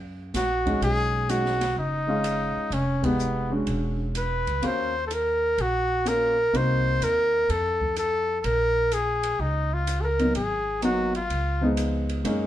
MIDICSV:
0, 0, Header, 1, 6, 480
1, 0, Start_track
1, 0, Key_signature, -5, "minor"
1, 0, Tempo, 476190
1, 821, Time_signature, 4, 2, 24, 8
1, 12568, End_track
2, 0, Start_track
2, 0, Title_t, "Trumpet"
2, 0, Program_c, 0, 56
2, 360, Note_on_c, 0, 66, 75
2, 796, Note_off_c, 0, 66, 0
2, 841, Note_on_c, 0, 68, 88
2, 1310, Note_on_c, 0, 66, 77
2, 1325, Note_off_c, 0, 68, 0
2, 1784, Note_off_c, 0, 66, 0
2, 1801, Note_on_c, 0, 63, 80
2, 2755, Note_on_c, 0, 61, 75
2, 2770, Note_off_c, 0, 63, 0
2, 3075, Note_on_c, 0, 59, 68
2, 3090, Note_off_c, 0, 61, 0
2, 3549, Note_off_c, 0, 59, 0
2, 4212, Note_on_c, 0, 71, 80
2, 4697, Note_on_c, 0, 72, 91
2, 4713, Note_off_c, 0, 71, 0
2, 5104, Note_off_c, 0, 72, 0
2, 5110, Note_on_c, 0, 69, 58
2, 5173, Note_on_c, 0, 70, 75
2, 5189, Note_off_c, 0, 69, 0
2, 5657, Note_on_c, 0, 66, 74
2, 5673, Note_off_c, 0, 70, 0
2, 6131, Note_on_c, 0, 70, 77
2, 6146, Note_off_c, 0, 66, 0
2, 6619, Note_on_c, 0, 72, 88
2, 6634, Note_off_c, 0, 70, 0
2, 7093, Note_on_c, 0, 70, 80
2, 7108, Note_off_c, 0, 72, 0
2, 7566, Note_on_c, 0, 69, 80
2, 7581, Note_off_c, 0, 70, 0
2, 8037, Note_off_c, 0, 69, 0
2, 8051, Note_on_c, 0, 69, 80
2, 8475, Note_off_c, 0, 69, 0
2, 8475, Note_on_c, 0, 69, 63
2, 8516, Note_on_c, 0, 70, 87
2, 8532, Note_off_c, 0, 69, 0
2, 9005, Note_on_c, 0, 68, 75
2, 9020, Note_off_c, 0, 70, 0
2, 9479, Note_on_c, 0, 63, 72
2, 9494, Note_off_c, 0, 68, 0
2, 9811, Note_on_c, 0, 65, 64
2, 9826, Note_off_c, 0, 63, 0
2, 10090, Note_on_c, 0, 69, 55
2, 10105, Note_off_c, 0, 65, 0
2, 10124, Note_on_c, 0, 70, 77
2, 10139, Note_off_c, 0, 69, 0
2, 10437, Note_off_c, 0, 70, 0
2, 10441, Note_on_c, 0, 68, 75
2, 10882, Note_off_c, 0, 68, 0
2, 10928, Note_on_c, 0, 66, 70
2, 11221, Note_off_c, 0, 66, 0
2, 11250, Note_on_c, 0, 65, 69
2, 11836, Note_off_c, 0, 65, 0
2, 12568, End_track
3, 0, Start_track
3, 0, Title_t, "Grand piano"
3, 0, Program_c, 1, 0
3, 660, Note_on_c, 1, 61, 58
3, 661, Note_on_c, 1, 56, 60
3, 665, Note_on_c, 1, 63, 57
3, 673, Note_on_c, 1, 66, 65
3, 1266, Note_off_c, 1, 56, 0
3, 1266, Note_off_c, 1, 61, 0
3, 1268, Note_off_c, 1, 63, 0
3, 1272, Note_off_c, 1, 66, 0
3, 1295, Note_on_c, 1, 56, 48
3, 1296, Note_on_c, 1, 61, 43
3, 1301, Note_on_c, 1, 63, 42
3, 1306, Note_on_c, 1, 66, 51
3, 1589, Note_off_c, 1, 56, 0
3, 1589, Note_off_c, 1, 61, 0
3, 1592, Note_off_c, 1, 63, 0
3, 1594, Note_off_c, 1, 66, 0
3, 2090, Note_on_c, 1, 56, 58
3, 2097, Note_on_c, 1, 61, 56
3, 2098, Note_on_c, 1, 63, 57
3, 2104, Note_on_c, 1, 65, 70
3, 2701, Note_off_c, 1, 56, 0
3, 2704, Note_off_c, 1, 61, 0
3, 2704, Note_off_c, 1, 63, 0
3, 2708, Note_off_c, 1, 65, 0
3, 3047, Note_on_c, 1, 56, 52
3, 3050, Note_on_c, 1, 59, 52
3, 3055, Note_on_c, 1, 63, 49
3, 3058, Note_on_c, 1, 67, 62
3, 3503, Note_off_c, 1, 56, 0
3, 3504, Note_off_c, 1, 59, 0
3, 3507, Note_off_c, 1, 63, 0
3, 3508, Note_off_c, 1, 67, 0
3, 3529, Note_on_c, 1, 56, 54
3, 3535, Note_on_c, 1, 61, 47
3, 3540, Note_on_c, 1, 62, 48
3, 3544, Note_on_c, 1, 66, 57
3, 4141, Note_off_c, 1, 56, 0
3, 4144, Note_off_c, 1, 61, 0
3, 4147, Note_off_c, 1, 62, 0
3, 4149, Note_off_c, 1, 66, 0
3, 4659, Note_on_c, 1, 58, 59
3, 4663, Note_on_c, 1, 61, 52
3, 4667, Note_on_c, 1, 65, 52
3, 4671, Note_on_c, 1, 66, 63
3, 4952, Note_off_c, 1, 58, 0
3, 4955, Note_off_c, 1, 61, 0
3, 4956, Note_off_c, 1, 65, 0
3, 4958, Note_off_c, 1, 66, 0
3, 6100, Note_on_c, 1, 58, 50
3, 6104, Note_on_c, 1, 61, 45
3, 6108, Note_on_c, 1, 65, 43
3, 6113, Note_on_c, 1, 66, 52
3, 6394, Note_off_c, 1, 58, 0
3, 6396, Note_off_c, 1, 61, 0
3, 6399, Note_off_c, 1, 65, 0
3, 6401, Note_off_c, 1, 66, 0
3, 6583, Note_on_c, 1, 58, 61
3, 6588, Note_on_c, 1, 60, 56
3, 6591, Note_on_c, 1, 63, 55
3, 6601, Note_on_c, 1, 66, 65
3, 7546, Note_off_c, 1, 58, 0
3, 7548, Note_off_c, 1, 60, 0
3, 7550, Note_off_c, 1, 63, 0
3, 7555, Note_off_c, 1, 66, 0
3, 10269, Note_on_c, 1, 54, 48
3, 10273, Note_on_c, 1, 58, 44
3, 10277, Note_on_c, 1, 59, 44
3, 10281, Note_on_c, 1, 63, 53
3, 10412, Note_off_c, 1, 54, 0
3, 10413, Note_off_c, 1, 58, 0
3, 10415, Note_off_c, 1, 59, 0
3, 10417, Note_off_c, 1, 63, 0
3, 10903, Note_on_c, 1, 54, 54
3, 10910, Note_on_c, 1, 58, 47
3, 10911, Note_on_c, 1, 59, 48
3, 10915, Note_on_c, 1, 63, 59
3, 11198, Note_off_c, 1, 54, 0
3, 11201, Note_off_c, 1, 58, 0
3, 11202, Note_off_c, 1, 59, 0
3, 11204, Note_off_c, 1, 63, 0
3, 11705, Note_on_c, 1, 53, 63
3, 11713, Note_on_c, 1, 56, 53
3, 11713, Note_on_c, 1, 59, 54
3, 11718, Note_on_c, 1, 63, 67
3, 12312, Note_off_c, 1, 53, 0
3, 12316, Note_off_c, 1, 56, 0
3, 12316, Note_off_c, 1, 59, 0
3, 12319, Note_off_c, 1, 63, 0
3, 12339, Note_on_c, 1, 56, 61
3, 12344, Note_on_c, 1, 58, 55
3, 12349, Note_on_c, 1, 61, 54
3, 12353, Note_on_c, 1, 63, 63
3, 12568, Note_off_c, 1, 56, 0
3, 12568, Note_off_c, 1, 58, 0
3, 12568, Note_off_c, 1, 61, 0
3, 12568, Note_off_c, 1, 63, 0
3, 12568, End_track
4, 0, Start_track
4, 0, Title_t, "Upright bass"
4, 0, Program_c, 2, 32
4, 0, Note_on_c, 2, 42, 71
4, 308, Note_off_c, 2, 42, 0
4, 343, Note_on_c, 2, 34, 63
4, 787, Note_off_c, 2, 34, 0
4, 820, Note_on_c, 2, 35, 75
4, 1738, Note_off_c, 2, 35, 0
4, 1777, Note_on_c, 2, 30, 73
4, 2541, Note_off_c, 2, 30, 0
4, 2725, Note_on_c, 2, 29, 73
4, 3652, Note_off_c, 2, 29, 0
4, 3695, Note_on_c, 2, 28, 72
4, 4463, Note_off_c, 2, 28, 0
4, 4508, Note_on_c, 2, 37, 58
4, 4651, Note_off_c, 2, 37, 0
4, 4659, Note_on_c, 2, 39, 71
4, 5581, Note_off_c, 2, 39, 0
4, 5623, Note_on_c, 2, 34, 69
4, 6545, Note_off_c, 2, 34, 0
4, 6586, Note_on_c, 2, 36, 73
4, 7033, Note_off_c, 2, 36, 0
4, 7067, Note_on_c, 2, 39, 66
4, 7514, Note_off_c, 2, 39, 0
4, 7552, Note_on_c, 2, 41, 71
4, 8471, Note_off_c, 2, 41, 0
4, 8510, Note_on_c, 2, 34, 78
4, 9430, Note_off_c, 2, 34, 0
4, 9466, Note_on_c, 2, 37, 73
4, 10388, Note_off_c, 2, 37, 0
4, 10434, Note_on_c, 2, 32, 74
4, 11351, Note_off_c, 2, 32, 0
4, 11390, Note_on_c, 2, 37, 67
4, 12307, Note_off_c, 2, 37, 0
4, 12343, Note_on_c, 2, 42, 76
4, 12568, Note_off_c, 2, 42, 0
4, 12568, End_track
5, 0, Start_track
5, 0, Title_t, "Muted upright bass strokes"
5, 2581, Note_on_c, 9, 29, 33
5, 2682, Note_off_c, 9, 29, 0
5, 12568, End_track
6, 0, Start_track
6, 0, Title_t, "Drums"
6, 345, Note_on_c, 9, 38, 31
6, 346, Note_on_c, 9, 44, 53
6, 346, Note_on_c, 9, 51, 58
6, 446, Note_off_c, 9, 38, 0
6, 447, Note_off_c, 9, 44, 0
6, 447, Note_off_c, 9, 51, 0
6, 670, Note_on_c, 9, 36, 45
6, 672, Note_on_c, 9, 51, 38
6, 771, Note_off_c, 9, 36, 0
6, 772, Note_off_c, 9, 51, 0
6, 829, Note_on_c, 9, 51, 51
6, 930, Note_off_c, 9, 51, 0
6, 1304, Note_on_c, 9, 44, 46
6, 1304, Note_on_c, 9, 51, 52
6, 1405, Note_off_c, 9, 44, 0
6, 1405, Note_off_c, 9, 51, 0
6, 1465, Note_on_c, 9, 38, 24
6, 1566, Note_off_c, 9, 38, 0
6, 1620, Note_on_c, 9, 38, 32
6, 1624, Note_on_c, 9, 51, 54
6, 1721, Note_off_c, 9, 38, 0
6, 1725, Note_off_c, 9, 51, 0
6, 2258, Note_on_c, 9, 44, 48
6, 2258, Note_on_c, 9, 51, 56
6, 2359, Note_off_c, 9, 44, 0
6, 2359, Note_off_c, 9, 51, 0
6, 2741, Note_on_c, 9, 51, 49
6, 2842, Note_off_c, 9, 51, 0
6, 3061, Note_on_c, 9, 51, 57
6, 3062, Note_on_c, 9, 36, 69
6, 3162, Note_off_c, 9, 51, 0
6, 3163, Note_off_c, 9, 36, 0
6, 3218, Note_on_c, 9, 44, 51
6, 3319, Note_off_c, 9, 44, 0
6, 3697, Note_on_c, 9, 51, 44
6, 3798, Note_off_c, 9, 51, 0
6, 4183, Note_on_c, 9, 44, 43
6, 4183, Note_on_c, 9, 51, 56
6, 4284, Note_off_c, 9, 44, 0
6, 4284, Note_off_c, 9, 51, 0
6, 4508, Note_on_c, 9, 51, 38
6, 4608, Note_off_c, 9, 51, 0
6, 4663, Note_on_c, 9, 51, 48
6, 4763, Note_off_c, 9, 51, 0
6, 5147, Note_on_c, 9, 44, 43
6, 5147, Note_on_c, 9, 51, 50
6, 5248, Note_off_c, 9, 44, 0
6, 5248, Note_off_c, 9, 51, 0
6, 5627, Note_on_c, 9, 51, 45
6, 5728, Note_off_c, 9, 51, 0
6, 6111, Note_on_c, 9, 44, 56
6, 6111, Note_on_c, 9, 51, 53
6, 6212, Note_off_c, 9, 44, 0
6, 6212, Note_off_c, 9, 51, 0
6, 6598, Note_on_c, 9, 51, 47
6, 6698, Note_off_c, 9, 51, 0
6, 7074, Note_on_c, 9, 44, 47
6, 7074, Note_on_c, 9, 51, 53
6, 7175, Note_off_c, 9, 44, 0
6, 7175, Note_off_c, 9, 51, 0
6, 7556, Note_on_c, 9, 51, 49
6, 7657, Note_off_c, 9, 51, 0
6, 7875, Note_on_c, 9, 36, 51
6, 7976, Note_off_c, 9, 36, 0
6, 8028, Note_on_c, 9, 44, 48
6, 8028, Note_on_c, 9, 51, 51
6, 8129, Note_off_c, 9, 44, 0
6, 8129, Note_off_c, 9, 51, 0
6, 8508, Note_on_c, 9, 51, 50
6, 8609, Note_off_c, 9, 51, 0
6, 8987, Note_on_c, 9, 44, 50
6, 8987, Note_on_c, 9, 51, 50
6, 9088, Note_off_c, 9, 44, 0
6, 9088, Note_off_c, 9, 51, 0
6, 9308, Note_on_c, 9, 51, 55
6, 9408, Note_off_c, 9, 51, 0
6, 9951, Note_on_c, 9, 44, 57
6, 9951, Note_on_c, 9, 51, 55
6, 10052, Note_off_c, 9, 44, 0
6, 10052, Note_off_c, 9, 51, 0
6, 10275, Note_on_c, 9, 51, 38
6, 10376, Note_off_c, 9, 51, 0
6, 10431, Note_on_c, 9, 51, 48
6, 10532, Note_off_c, 9, 51, 0
6, 10909, Note_on_c, 9, 44, 47
6, 10909, Note_on_c, 9, 51, 50
6, 11010, Note_off_c, 9, 44, 0
6, 11010, Note_off_c, 9, 51, 0
6, 11236, Note_on_c, 9, 51, 35
6, 11337, Note_off_c, 9, 51, 0
6, 11392, Note_on_c, 9, 51, 49
6, 11493, Note_off_c, 9, 51, 0
6, 11865, Note_on_c, 9, 44, 46
6, 11865, Note_on_c, 9, 51, 57
6, 11966, Note_off_c, 9, 44, 0
6, 11966, Note_off_c, 9, 51, 0
6, 12191, Note_on_c, 9, 51, 37
6, 12292, Note_off_c, 9, 51, 0
6, 12347, Note_on_c, 9, 51, 57
6, 12447, Note_off_c, 9, 51, 0
6, 12568, End_track
0, 0, End_of_file